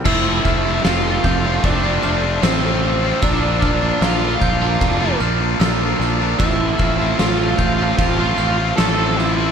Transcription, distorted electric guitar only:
\new Staff \with { instrumentName = "Distorted electric guitar" } { \time 4/4 \key f \major \tempo 4 = 76 <f a c' f'>8 <f a c' f'>16 <a c' f'>16 <f a c' f'>8 <f a c' f'>16 <a c' f'>8 <a c' f'>16 <f a c' f'>16 <a c' f'>16 <f a c' f'>16 <a c' f'>8 <a c' f'>16 | <bes, f bes d' f'>8 <f bes d' f'>16 <bes d' f'>16 <bes, f bes d' f'>8 <f bes d' f'>16 <bes d' f'>8 <bes d' f'>16 <f bes d' f'>16 <bes d' f'>16 <bes, f bes d' f'>16 <bes d' f'>8 <bes d' f'>16 | <a, f a c' f'>8 <f a c' f'>16 <a c' f'>16 <a, f a c' f'>8 <f a c' f'>16 <a c' f'>8 <a c' f'>16 <f a c' f'>16 <a c' f'>16 <a, f a c' f'>16 <a c' f'>8 <a c' f'>16 | }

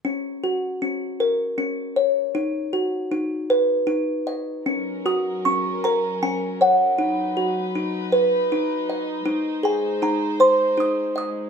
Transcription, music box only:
\new Staff \with { instrumentName = "Music box" } { \time 3/4 \key fis \major \tempo 4 = 78 << { r2. | r2. | r8 dis'''8 cis'''8 ais''8 gis''8 fis''8~ | fis''4. r4. |
r8 gis''8 ais''8 bis''8 dis'''8 dis'''8 | } \\ { cis'8 fis'8 cis'8 ais'8 cis'8 cis''8 | dis'8 fis'8 dis'8 b'8 dis'8 dis''8 | cis'8 fis'8 cis'8 ais'8 cis'8 cis''8 | dis'8 fis'8 dis'8 b'8 dis'8 dis''8 |
dis'8 gis'8 dis'8 bis'8 dis'8 dis''8 | } >> }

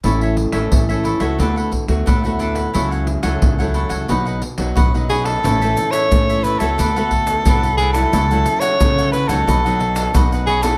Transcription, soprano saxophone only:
\new Staff \with { instrumentName = "Soprano saxophone" } { \time 4/4 \key a \major \tempo 4 = 89 r1 | r2. r8 gis'16 a'16~ | a'8. cis''8. b'16 a'4.~ a'16 gis'16 a'16~ | a'8. cis''8. b'16 a'4~ a'16 r8 gis'16 a'16 | }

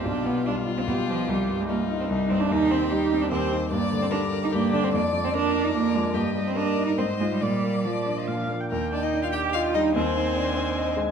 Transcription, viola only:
\new Staff \with { instrumentName = "Viola" } { \time 3/4 \key c \minor \tempo 4 = 147 f'2 g'4 | g'4 f'4 ees'4~ | ees'4 g'4 g'4 | \key ees \major d''4 d''4 d''4 |
d''4 d''4 d''4 | ees''2 ees''4 | d''4 d''8. ees''16 f''8. g''16 | g''2. |
aes''2. | }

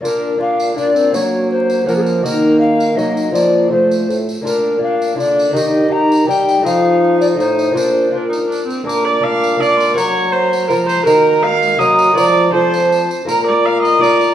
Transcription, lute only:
<<
  \new Staff \with { instrumentName = "Lute" } { \time 3/4 \key bes \major \tempo 4 = 163 <bes d' f'>4 <bes d' f'>4 <bes d' f'>4 | <bes des' ges'>2 <bes des' ges''>4 | <bes ees' ges'>2 <bes ees' ges'>4 | <bes c' f'>4 <a c' f'>2 |
<bes d' f'>4 <bes d' f'>4 <bes d' f'>4 | <bes ees' g'>4 <bes ees' g'>4 <bes ees' g'>4 | <a ees' f'>2 <a ees' f'>4 | <bes d' f'>4 <bes d' f'>2 |
<bes d' bes'>4 <bes d' bes'>4 <bes d' bes'>4 | <bes bes' ges''>2. | <bes ges' bes'>2 <bes ges' bes'>4 | <bes f' bes'>4 <c' f' a'>2 |
<bes f' bes'>2 <bes f' bes'>4 | }
  \new Staff \with { instrumentName = "Lute" } { \clef bass \time 3/4 \key bes \major bes,2. | ges2 f4 | ees2 ges4 | f4 f4 a,8 r8 |
bes,2 d4 | ees2 g4 | f2 a,4 | bes,2~ bes,8 r8 |
bes,2. | ges2 f4 | ees2 ges4 | f4 f4. r8 |
bes,2. | }
>>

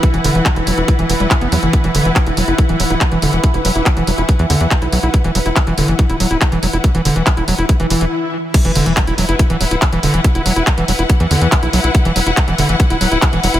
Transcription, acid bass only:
\new Staff \with { instrumentName = "Acid bass" } { \clef bass \time 4/4 \key c \lydian \tempo 4 = 141 r16 e16 d16 e16 r16 e'16 fis16 e'16 r16 e16 e16 g16 r16 b16 fis16 e16 | r16 e16 d16 e16 r16 e'16 fis16 e'16 r16 e16 fis16 e'16 r16 e16 d16 e16 | r16 e'16 fis16 e'16 r16 e16 fis16 e'16 r16 e16 d16 e16 r16 e'16 fis16 e'16 | r16 e16 fis16 e'16 r16 e16 d16 e16 r16 e'16 fis16 e'16 r16 e16 fis16 e'16 |
r16 e16 d16 e16 r16 e'16 fis16 e'16 r16 e16 e16 e16 r4 | r16 e16 d16 e16 r16 e'16 fis16 e'16 r16 e16 fis16 e'16 r16 e16 d16 e16 | r16 e'16 fis16 e'16 r16 e16 fis16 e'16 r16 e16 d16 e16 r16 e'16 fis16 e'16 | r16 e16 fis16 e'16 r16 e16 d16 e16 r16 e'16 fis16 e'16 r16 e16 fis16 e'16 | }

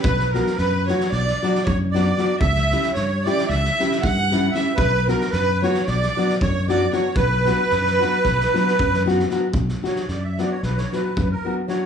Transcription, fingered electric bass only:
\new Staff \with { instrumentName = "Fingered electric bass" } { \clef bass \time 9/8 \key b \minor \tempo 4. = 76 b,,4 fis,4 b,,8 r8 fis,4. | cis,4 g,4 cis,8 r8 g,4. | b,,4 fis,4 b,,8 r8 fis,4. | b,,4 fis,4 b,,8 r8 fis,4. |
b,,8 r8 fis,4 b,,8 r8 fis,8 r4 | }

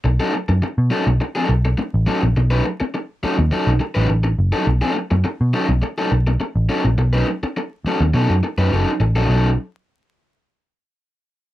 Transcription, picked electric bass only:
\new Staff \with { instrumentName = "Picked electric bass" } { \clef bass \time 4/4 \key b \mixolydian \tempo 4 = 104 b,,16 r8 fis,16 r16 b,16 r16 b,,16 r8 b,,8 r16 a,,16 r16 ais,,16 | b,,8 r4 r16 dis,16 r16 b,,16 r16 a,,16 a,,8 fis,,16 r16 | b,,16 r8 fis,16 r16 b,16 r16 b,,16 r8 b,,8 r16 a,,16 r16 ais,,16 | b,,8 r4 r16 dis,16 b,16 fis,16 r16 fis,16 fis,,16 r16 a,,16 ais,,16 |
b,,8 r2. r8 | }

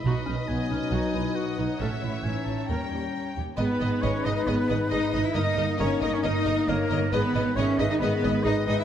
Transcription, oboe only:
\new Staff \with { instrumentName = "Oboe" } { \time 4/4 \key b \mixolydian \tempo 4 = 136 b''4 gis''2 fis''4~ | fis''4 gis''8 a''8 ais''4. r8 | \key gis \minor b'4 cis''8 dis''16 dis''16 b'4 dis''8 dis''16 e''16 | dis''4 cis''8 dis''16 cis''16 dis''4 ais'4 |
b'4 cis''8 dis''16 dis''16 b'4 dis''8 dis''16 e''16 | }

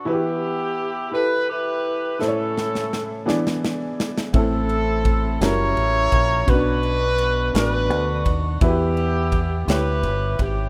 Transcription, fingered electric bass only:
\new Staff \with { instrumentName = "Fingered electric bass" } { \clef bass \time 6/8 \key e \dorian \tempo 4. = 56 r2. | r2. | a,,4. fis,,8 a,,8 ais,,8 | b,,4. a,,8 d,8 ees,8 |
e,4. d,8 g,,8 gis,,8 | }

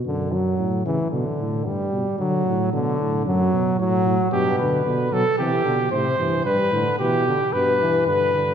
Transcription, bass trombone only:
\new Staff \with { instrumentName = "Bass trombone" } { \clef bass \time 4/4 \key g \major \tempo 4 = 112 fis,4 a,8 cis8 b,8 a,8 g,8 b,8 | d8 a,8 b,8 a,8 fis,8 b,8 a,8 a,8 | g,8 d8 b,8 b,8 c8 b,8 a,8 g,8 | g,8 a,8 b,8 r8 g,4 g,4 | }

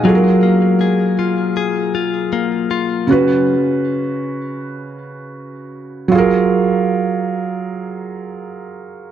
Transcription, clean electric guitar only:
\new Staff \with { instrumentName = "Clean electric guitar" } { \time 4/4 \key fis \major \tempo 4 = 79 fis8 ais8 gis'8 eis'8 gis'8 eis'8 ais8 eis'8 | r1 | r1 | }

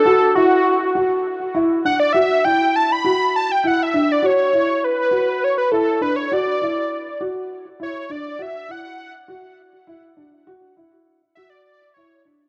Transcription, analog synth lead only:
\new Staff \with { instrumentName = "Analog synth lead" } { \time 7/8 \key d \major \tempo 4 = 101 a'8 fis'4 r4. fis''16 d''16 | e''8 g''8 a''16 b''8. a''16 g''16 fis''16 e''8 d''16 | cis''4 b'4 cis''16 b'16 a'8 b'16 cis''16 | d''4. r4 cis''8 d''8 |
e''8 fis''16 fis''8 r2 r16 | r4. e''16 d''16 d''8 cis''8 r8 | }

